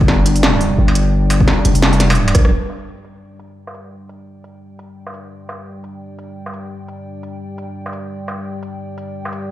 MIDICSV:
0, 0, Header, 1, 5, 480
1, 0, Start_track
1, 0, Tempo, 348837
1, 1556, Time_signature, 4, 2, 24, 8
1, 13090, End_track
2, 0, Start_track
2, 0, Title_t, "Analog synth pad"
2, 0, Program_c, 0, 89
2, 0, Note_on_c, 0, 55, 90
2, 0, Note_on_c, 0, 62, 78
2, 0, Note_on_c, 0, 74, 80
2, 0, Note_on_c, 0, 79, 78
2, 3456, Note_off_c, 0, 55, 0
2, 3473, Note_on_c, 0, 55, 86
2, 3475, Note_off_c, 0, 62, 0
2, 3476, Note_off_c, 0, 74, 0
2, 3478, Note_off_c, 0, 79, 0
2, 3661, Note_on_c, 0, 62, 90
2, 3673, Note_on_c, 0, 79, 86
2, 3982, Note_on_c, 0, 74, 72
2, 13090, Note_off_c, 0, 55, 0
2, 13090, Note_off_c, 0, 62, 0
2, 13090, Note_off_c, 0, 74, 0
2, 13090, Note_off_c, 0, 79, 0
2, 13090, End_track
3, 0, Start_track
3, 0, Title_t, "808-style bass"
3, 0, Program_c, 1, 38
3, 0, Note_on_c, 1, 31, 96
3, 1060, Note_off_c, 1, 31, 0
3, 1079, Note_on_c, 1, 31, 98
3, 2021, Note_off_c, 1, 31, 0
3, 2276, Note_on_c, 1, 29, 100
3, 3220, Note_off_c, 1, 29, 0
3, 3233, Note_on_c, 1, 34, 99
3, 3459, Note_off_c, 1, 34, 0
3, 13090, End_track
4, 0, Start_track
4, 0, Title_t, "Struck metal"
4, 1213, Note_on_c, 9, 77, 37
4, 1350, Note_off_c, 9, 77, 0
4, 1790, Note_on_c, 9, 77, 36
4, 1928, Note_off_c, 9, 77, 0
4, 2891, Note_on_c, 9, 77, 66
4, 3029, Note_off_c, 9, 77, 0
4, 3133, Note_on_c, 9, 77, 40
4, 3271, Note_off_c, 9, 77, 0
4, 3710, Note_on_c, 9, 77, 33
4, 3848, Note_off_c, 9, 77, 0
4, 5054, Note_on_c, 9, 77, 35
4, 5192, Note_off_c, 9, 77, 0
4, 6970, Note_on_c, 9, 77, 34
4, 7108, Note_off_c, 9, 77, 0
4, 7553, Note_on_c, 9, 77, 33
4, 7691, Note_off_c, 9, 77, 0
4, 8892, Note_on_c, 9, 77, 32
4, 9029, Note_off_c, 9, 77, 0
4, 10814, Note_on_c, 9, 77, 31
4, 10952, Note_off_c, 9, 77, 0
4, 11394, Note_on_c, 9, 77, 32
4, 11531, Note_off_c, 9, 77, 0
4, 12732, Note_on_c, 9, 77, 33
4, 12870, Note_off_c, 9, 77, 0
4, 13090, End_track
5, 0, Start_track
5, 0, Title_t, "Drums"
5, 15, Note_on_c, 9, 36, 62
5, 113, Note_on_c, 9, 38, 59
5, 152, Note_off_c, 9, 36, 0
5, 251, Note_off_c, 9, 38, 0
5, 354, Note_on_c, 9, 42, 67
5, 491, Note_on_c, 9, 46, 70
5, 492, Note_off_c, 9, 42, 0
5, 593, Note_on_c, 9, 38, 112
5, 628, Note_off_c, 9, 46, 0
5, 730, Note_off_c, 9, 38, 0
5, 835, Note_on_c, 9, 46, 41
5, 972, Note_off_c, 9, 46, 0
5, 1312, Note_on_c, 9, 42, 68
5, 1450, Note_off_c, 9, 42, 0
5, 1790, Note_on_c, 9, 46, 67
5, 1928, Note_off_c, 9, 46, 0
5, 1933, Note_on_c, 9, 36, 60
5, 2031, Note_on_c, 9, 38, 59
5, 2071, Note_off_c, 9, 36, 0
5, 2168, Note_off_c, 9, 38, 0
5, 2269, Note_on_c, 9, 42, 66
5, 2407, Note_off_c, 9, 42, 0
5, 2409, Note_on_c, 9, 46, 73
5, 2510, Note_on_c, 9, 38, 118
5, 2547, Note_off_c, 9, 46, 0
5, 2647, Note_off_c, 9, 38, 0
5, 2652, Note_on_c, 9, 46, 37
5, 2752, Note_on_c, 9, 38, 64
5, 2752, Note_on_c, 9, 42, 84
5, 2789, Note_off_c, 9, 46, 0
5, 2890, Note_off_c, 9, 38, 0
5, 2890, Note_off_c, 9, 42, 0
5, 2891, Note_on_c, 9, 46, 18
5, 2912, Note_off_c, 9, 46, 0
5, 2912, Note_on_c, 9, 46, 25
5, 2958, Note_off_c, 9, 46, 0
5, 2958, Note_on_c, 9, 46, 33
5, 3096, Note_off_c, 9, 46, 0
5, 3133, Note_on_c, 9, 42, 37
5, 3230, Note_off_c, 9, 42, 0
5, 3230, Note_on_c, 9, 37, 66
5, 3230, Note_on_c, 9, 42, 74
5, 3232, Note_on_c, 9, 36, 61
5, 3368, Note_off_c, 9, 37, 0
5, 3368, Note_off_c, 9, 42, 0
5, 3369, Note_off_c, 9, 36, 0
5, 3369, Note_on_c, 9, 37, 75
5, 3507, Note_off_c, 9, 37, 0
5, 3710, Note_on_c, 9, 42, 75
5, 3848, Note_off_c, 9, 42, 0
5, 4191, Note_on_c, 9, 42, 65
5, 4328, Note_off_c, 9, 42, 0
5, 4672, Note_on_c, 9, 42, 79
5, 4810, Note_off_c, 9, 42, 0
5, 5153, Note_on_c, 9, 42, 70
5, 5290, Note_off_c, 9, 42, 0
5, 5633, Note_on_c, 9, 42, 73
5, 5771, Note_off_c, 9, 42, 0
5, 6112, Note_on_c, 9, 42, 66
5, 6249, Note_off_c, 9, 42, 0
5, 6592, Note_on_c, 9, 42, 82
5, 6730, Note_off_c, 9, 42, 0
5, 7072, Note_on_c, 9, 42, 68
5, 7209, Note_off_c, 9, 42, 0
5, 7553, Note_on_c, 9, 42, 76
5, 7691, Note_off_c, 9, 42, 0
5, 8036, Note_on_c, 9, 42, 63
5, 8173, Note_off_c, 9, 42, 0
5, 8513, Note_on_c, 9, 42, 78
5, 8650, Note_off_c, 9, 42, 0
5, 8993, Note_on_c, 9, 42, 64
5, 9131, Note_off_c, 9, 42, 0
5, 9473, Note_on_c, 9, 42, 70
5, 9611, Note_off_c, 9, 42, 0
5, 9951, Note_on_c, 9, 42, 61
5, 10089, Note_off_c, 9, 42, 0
5, 10432, Note_on_c, 9, 42, 74
5, 10570, Note_off_c, 9, 42, 0
5, 10814, Note_on_c, 9, 42, 33
5, 10911, Note_off_c, 9, 42, 0
5, 10911, Note_on_c, 9, 42, 65
5, 11048, Note_off_c, 9, 42, 0
5, 11394, Note_on_c, 9, 42, 71
5, 11531, Note_off_c, 9, 42, 0
5, 11871, Note_on_c, 9, 42, 62
5, 12008, Note_off_c, 9, 42, 0
5, 12352, Note_on_c, 9, 42, 73
5, 12490, Note_off_c, 9, 42, 0
5, 12833, Note_on_c, 9, 42, 64
5, 12970, Note_off_c, 9, 42, 0
5, 13090, End_track
0, 0, End_of_file